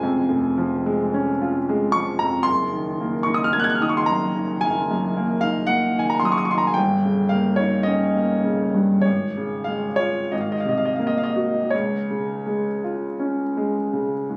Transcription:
0.00 0.26 F1 medium
0.00 0.47 F2 medium
0.00 0.58 F3 medium
0.00 0.86 G#3 medium
0.00 1.14 C#4 medium
0.00 1.42 F4 medium
0.00 1.94 G#5 medium
0.00 2.19 A#5 loud
0.29 2.42 F1 medium
0.58 1.02 F3 medium
0.86 1.30 G#3 medium
1.14 1.57 C#4 medium
1.42 1.84 F4 medium
1.69 2.11 G#3 medium
1.92 2.36 F3 medium
1.92 2.19 C#6 loud
2.19 2.47 F2 medium
2.19 2.46 A#5 medium
2.43 4.57 F#1 medium
2.43 3.24 C6 loud
2.73 3.15 D#3 medium
3.01 3.43 A#3 medium
3.23 3.70 D#4 medium
3.23 3.36 C#6 medium
3.34 3.45 D#6 medium
3.44 3.53 F6 medium
3.53 3.97 A#3 medium
3.53 3.60 G#6 medium
3.60 3.66 F#6 medium
3.64 3.71 G#6 medium
3.70 3.77 F#6 medium
3.75 3.83 F6 medium
3.80 4.24 D#3 medium
3.80 3.91 D#6 medium
3.89 3.98 C#6 medium
3.97 4.07 C6 medium
4.06 4.51 F#2 medium
4.06 4.61 A#5 medium
4.35 4.78 D#3 medium
4.61 6.74 F#1 medium
4.61 5.40 G#5 medium
4.91 5.32 F#2 medium
5.17 5.58 A#3 medium
5.41 5.85 D#4 medium
5.41 5.67 F5 medium
5.67 6.11 A#3 medium
5.67 5.99 F#5 medium
5.96 6.39 D#3 medium
5.96 6.11 G#5 medium
6.10 6.20 A#5 medium
6.20 6.67 F#2 medium
6.20 6.27 C6 medium
6.25 6.33 D#6 medium
6.32 6.39 C#6 medium
6.38 6.45 D#6 medium
6.45 6.52 C#6 medium
6.51 6.78 D#3 medium
6.51 6.59 C6 medium
6.58 6.67 A#5 medium
6.67 6.76 G#5 medium
6.74 9.02 G1 medium
6.74 7.31 G5 medium
7.05 7.49 C#3 soft
7.29 7.76 A#3 medium
7.29 7.58 F5 medium
7.56 8.04 D#4 medium
7.56 7.86 C#5 medium
7.83 8.33 C#4 medium
7.83 9.04 D#5 medium
8.16 8.63 A#3 soft
8.43 8.93 C#3 soft
8.75 9.06 G2 medium
9.02 10.28 G#1 medium
9.02 9.66 C#5 medium
9.37 9.87 C#3 soft
9.64 10.19 G#3 medium
9.64 9.98 F5 medium
9.96 10.32 F4 medium
9.96 10.30 C#5 medium
10.32 11.69 G#1 medium
10.32 10.41 D#5 medium
10.41 10.50 F5 medium
10.52 10.60 D#5 medium
10.60 10.69 F5 medium
10.65 11.21 C3 soft
10.65 10.78 D#5 medium
10.77 10.87 F5 medium
10.85 10.96 D#5 medium
10.96 11.57 A#3 medium
10.96 11.06 F5 medium
11.07 11.17 D#5 medium
11.18 11.27 F5 medium
11.23 11.71 D#5 medium
11.36 11.73 F#4 soft
11.70 14.37 C#2 medium
11.70 14.37 C#5 medium
12.10 12.68 C#3 soft
12.46 13.03 G#3 soft
12.84 13.41 F4 soft
13.19 13.77 C#4 soft
13.57 14.14 G#3 soft
13.93 14.37 C#3 soft
14.30 14.37 G#2 soft

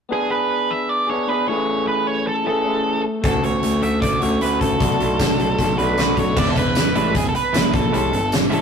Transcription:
0.09 1.06 B3 medium
0.09 1.07 D4 medium
0.09 1.06 G#4 medium
0.09 0.30 G#4 medium
0.31 0.70 B4 medium
0.71 0.89 E5 medium
0.89 1.08 D5 medium
1.07 1.26 B3 medium
1.07 1.27 D4 medium
1.07 1.26 G#4 medium
1.07 1.29 C#5 medium
1.27 1.46 B3 medium
1.27 1.46 D4 medium
1.27 1.47 G#4 medium
1.27 1.48 B4 medium
1.47 2.43 E3 medium
1.47 2.45 A3 medium
1.47 2.46 C#4 medium
1.47 2.46 G#4 medium
1.47 1.87 C#5 medium
1.88 2.07 B4 medium
2.07 2.27 C#5 medium
2.27 2.46 A4 medium
2.44 2.63 E3 medium
2.44 2.65 A3 medium
2.44 2.63 C#4 medium
2.44 2.62 G#4 medium
2.44 3.01 A4 medium
2.63 3.04 E3 medium
2.63 3.21 A3 medium
2.63 3.03 C#4 medium
2.63 3.02 G#4 medium
3.22 3.40 D2 medium
3.22 4.19 A3 medium
3.22 4.20 C#4 medium
3.22 4.19 F#4 medium
3.22 3.42 A4 medium
3.22 kick loud
3.22 closed hi-hat medium
3.43 3.60 D2 medium
3.43 3.83 C#5 medium
3.43 closed hi-hat medium
3.63 3.80 D2 medium
3.63 closed hi-hat medium
3.82 3.99 D2 medium
3.82 4.01 E5 medium
3.82 closed hi-hat medium
4.02 4.18 D2 medium
4.02 4.22 D5 medium
4.02 kick medium
4.02 closed hi-hat medium
4.20 4.38 D2 medium
4.20 4.39 A3 medium
4.20 4.40 C#4 medium
4.20 4.39 F#4 medium
4.20 4.42 C#5 medium
4.20 closed hi-hat medium
4.40 4.74 D2 medium
4.40 4.78 A3 medium
4.40 4.79 C#4 medium
4.40 4.80 F#4 medium
4.40 4.60 B4 medium
4.40 closed hi-hat medium
4.61 5.94 A4 medium
4.61 kick medium
4.61 closed hi-hat medium
4.79 4.97 B1 medium
4.79 5.76 A3 medium
4.79 5.77 D4 medium
4.79 5.75 F#4 medium
4.79 kick loud
4.79 closed hi-hat medium
5.00 5.16 B1 medium
5.00 closed hi-hat medium
5.19 5.36 B1 medium
5.19 kick medium
5.19 snare loud
5.19 closed hi-hat medium
5.19 tambourine loud
5.39 5.56 B1 medium
5.39 closed hi-hat medium
5.59 5.75 B1 medium
5.59 kick medium
5.59 closed hi-hat medium
5.77 5.94 B1 medium
5.77 5.96 A3 medium
5.77 5.97 D4 medium
5.77 5.96 F#4 medium
5.77 6.14 B4 medium
5.77 closed hi-hat medium
5.97 6.14 B1 medium
5.97 6.35 A3 medium
5.97 6.36 D4 medium
5.97 6.37 F#4 medium
5.97 snare loud
5.97 closed hi-hat medium
5.97 tambourine loud
6.17 6.33 B1 medium
6.17 6.38 C#5 loud
6.17 kick medium
6.17 closed hi-hat medium
6.36 6.91 E1 medium
6.36 6.94 E2 loud
6.36 6.62 E3 medium
6.36 6.62 G#3 medium
6.36 6.62 D4 medium
6.36 6.62 E4 medium
6.36 6.50 D5 medium
6.36 kick loud
6.36 crash medium
6.50 6.57 A4 medium
6.56 6.95 B4 loud
6.56 kick medium
6.56 closed hi-hat medium
6.75 snare loud
6.75 closed hi-hat medium
6.75 tambourine loud
6.95 7.13 A1 medium
6.95 7.14 A2 medium
6.95 7.21 E3 medium
6.95 7.21 G#3 medium
6.95 7.21 D4 medium
6.95 7.21 E4 medium
6.95 7.16 B4 medium
6.95 closed hi-hat medium
7.15 7.33 E1 medium
7.15 7.30 E2 medium
7.15 7.28 G#4 medium
7.15 kick medium
7.15 closed hi-hat medium
7.29 7.35 A4 medium
7.34 7.71 B4 medium
7.34 closed hi-hat medium
7.53 7.90 A#1 medium
7.53 7.92 A#2 medium
7.53 7.73 E3 medium
7.53 7.73 G#3 medium
7.53 7.73 D4 medium
7.53 7.73 E4 medium
7.53 snare loud
7.53 closed hi-hat medium
7.53 tambourine loud
7.74 7.94 A4 medium
7.74 kick loud
7.74 closed hi-hat medium
7.92 8.11 C2 medium
7.92 8.11 C3 loud
7.92 8.18 E3 medium
7.92 8.18 G#3 medium
7.92 8.18 C#4 medium
7.92 8.19 E4 medium
7.92 closed hi-hat medium
7.96 8.31 A4 medium
8.12 8.48 G1 medium
8.12 8.50 G2 medium
8.12 closed hi-hat medium
8.32 snare loud
8.32 closed hi-hat medium
8.32 tambourine loud
8.50 8.62 A1 medium
8.50 8.62 A2 loud
8.50 8.62 E3 medium
8.50 8.62 G#3 medium
8.50 8.62 C#4 medium
8.50 8.62 E4 medium
8.50 8.62 A4 medium
8.50 closed hi-hat medium

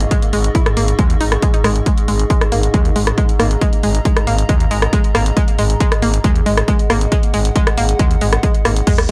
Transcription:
0.00 8.92 G#2 medium
0.00 8.86 G#4 medium
0.00 8.87 D#5 medium
0.00 2.83 C#6 medium
0.00 closed hi-hat medium
0.11 0.17 G#3 loud
0.11 kick loud
0.11 closed hi-hat medium
0.22 closed hi-hat medium
0.33 0.50 G#1 medium
0.33 0.39 G#3 medium
0.33 open hi-hat loud
0.44 closed hi-hat medium
0.55 0.64 E4 medium
0.55 kick loud
0.55 closed hi-hat medium
0.66 cross-stick medium
0.66 closed hi-hat medium
0.77 0.93 G#1 medium
0.77 0.86 A#3 medium
0.77 open hi-hat medium
0.88 closed hi-hat medium
0.99 1.15 D#2 medium
0.99 1.05 G#3 loud
0.99 kick loud
0.99 closed hi-hat medium
1.10 closed hi-hat medium
1.21 1.37 G#1 medium
1.21 1.24 D#4 medium
1.21 open hi-hat loud
1.32 cross-stick medium
1.32 closed hi-hat medium
1.42 1.51 G#3 medium
1.42 kick loud
1.42 closed hi-hat medium
1.54 1.57 D#4 medium
1.54 closed hi-hat medium
1.64 1.81 G#1 loud
1.64 1.70 G#3 loud
1.64 cross-stick medium
1.64 open hi-hat loud
1.76 closed hi-hat medium
1.86 1.92 G#3 loud
1.86 kick loud
1.86 closed hi-hat medium
1.98 closed hi-hat medium
2.08 2.25 G#1 medium
2.08 2.14 G#3 medium
2.08 open hi-hat loud
2.19 closed hi-hat medium
2.30 2.39 G#3 loud
2.30 kick loud
2.30 closed hi-hat medium
2.41 cross-stick medium
2.41 closed hi-hat soft
2.52 2.69 G#1 medium
2.52 2.61 A#3 medium
2.52 open hi-hat medium
2.63 closed hi-hat medium
2.74 2.90 D#2 medium
2.74 2.80 G#3 loud
2.74 kick loud
2.74 closed hi-hat medium
2.81 6.33 A#5 loud
2.85 closed hi-hat soft
2.96 3.12 G#1 medium
2.96 3.02 G#3 medium
2.96 open hi-hat loud
3.07 cross-stick medium
3.07 closed hi-hat medium
3.18 3.27 G#3 loud
3.18 kick loud
3.18 closed hi-hat medium
3.29 closed hi-hat medium
3.40 3.56 G#1 loud
3.40 3.49 A#3 medium
3.40 cross-stick medium
3.40 open hi-hat loud
3.51 closed hi-hat medium
3.61 3.67 G#3 loud
3.61 kick loud
3.61 closed hi-hat medium
3.73 closed hi-hat medium
3.83 4.00 G#1 loud
3.83 3.89 G#3 medium
3.83 open hi-hat loud
3.95 closed hi-hat medium
4.05 4.14 G#3 loud
4.05 kick loud
4.05 closed hi-hat medium
4.17 cross-stick medium
4.17 closed hi-hat soft
4.27 4.44 G#1 loud
4.27 4.36 A#3 medium
4.27 open hi-hat medium
4.38 closed hi-hat medium
4.49 4.66 D#2 loud
4.49 4.55 G#3 loud
4.49 kick loud
4.49 closed hi-hat medium
4.60 closed hi-hat soft
4.71 4.88 G#1 medium
4.71 4.77 G#3 medium
4.71 open hi-hat loud
4.82 cross-stick loud
4.82 closed hi-hat soft
4.93 5.02 G#3 loud
4.93 kick loud
4.93 closed hi-hat medium
5.04 closed hi-hat soft
5.15 5.31 G#1 loud
5.15 5.24 A#3 medium
5.15 cross-stick loud
5.15 open hi-hat medium
5.26 closed hi-hat medium
5.37 5.43 G#3 loud
5.37 kick loud
5.37 closed hi-hat medium
5.48 closed hi-hat medium
5.59 5.75 G#1 medium
5.59 5.65 G#3 medium
5.59 open hi-hat loud
5.70 closed hi-hat medium
5.80 5.89 G#3 loud
5.80 kick loud
5.80 closed hi-hat medium
5.92 cross-stick medium
5.92 closed hi-hat medium
6.02 6.19 G#1 medium
6.02 6.11 A#3 medium
6.02 open hi-hat medium
6.14 closed hi-hat medium
6.24 6.41 D#2 medium
6.24 6.30 G#3 loud
6.24 kick loud
6.24 closed hi-hat medium
6.31 8.89 F#5 medium
6.36 closed hi-hat soft
6.46 6.63 G#1 medium
6.46 6.52 G#3 medium
6.46 open hi-hat loud
6.57 cross-stick loud
6.57 closed hi-hat soft
6.68 6.77 G#3 loud
6.68 kick loud
6.68 closed hi-hat medium
6.79 closed hi-hat medium
6.90 7.06 G#1 loud
6.90 6.99 A#3 medium
6.90 cross-stick loud
6.90 open hi-hat medium
7.01 closed hi-hat medium
7.12 7.18 G#3 loud
7.12 kick loud
7.12 closed hi-hat loud
7.23 closed hi-hat medium
7.34 7.50 G#1 medium
7.34 7.40 G#3 medium
7.34 open hi-hat loud
7.45 closed hi-hat medium
7.56 7.65 G#3 loud
7.56 kick loud
7.56 closed hi-hat medium
7.67 cross-stick loud
7.67 closed hi-hat medium
7.78 7.94 G#1 medium
7.78 7.87 A#3 medium
7.78 open hi-hat medium
7.89 closed hi-hat medium
7.99 8.16 D#2 medium
7.99 8.05 G#3 loud
7.99 kick loud
7.99 closed hi-hat medium
8.11 closed hi-hat medium
8.21 8.38 G#1 medium
8.21 8.27 G#3 medium
8.21 open hi-hat loud
8.33 cross-stick loud
8.33 closed hi-hat medium
8.43 8.52 G#3 loud
8.43 kick loud
8.43 closed hi-hat medium
8.55 closed hi-hat medium
8.65 8.82 G#1 loud
8.65 8.74 A#3 medium
8.65 cross-stick medium
8.65 open hi-hat medium
8.76 closed hi-hat medium
8.87 8.93 G#3 loud
8.87 9.11 G#4 medium
8.87 kick loud
8.87 closed hi-hat loud
8.87 crash loud
8.87 sub drop medium
8.98 cross-stick loud
8.98 closed hi-hat medium

